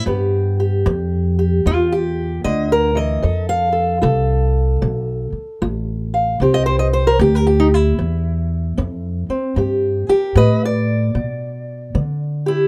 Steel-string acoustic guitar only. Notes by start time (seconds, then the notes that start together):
0.06 G2 B3 G4
0.60 G4
0.87 B3
1.39 G4
1.66 G2 F4
1.92 G4
2.44 D3 D#5
2.72 A#4
2.95 E3 D#5
3.22 F3 A4
3.49 F5
3.72 A4
4.02 F4 A4
4.82 C3
5.62 F4
6.14 F5
6.41 C3 C4 G4
6.54 D#5
6.66 C5
6.79 D#5
6.93 C5
7.07 A#4
7.20 C4 G4
7.35 A#4
7.47 G4
7.60 D#4
7.74 E4
7.99 G2
8.78 C4
9.30 C4
9.57 G2 G4
10.09 G4 A#4
10.36 B3 B4 D#5
10.65 D5
11.15 G2
11.95 B3
12.46 E4 G4